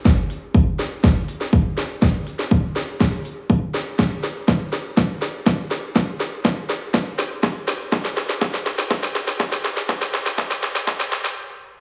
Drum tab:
HH |--o---o---o---o-|--o---o---o---o-|--o---o---o---o-|--o---o---o---o-|
SD |o-----o-o--o--o-|o--o--o-o-----o-|o-o-o-o-o-o-o-o-|o-o-o-o-o-o-o-o-|
BD |o---o---o---o---|o---o---o---o---|o---o---o---o---|o---o---o---o---|

HH |--o---o---o---o-|--o---o--oo-----|
SD |oooooooooooooooo|oooooooooooo----|
BD |o---o---o---o---|o---o---o-------|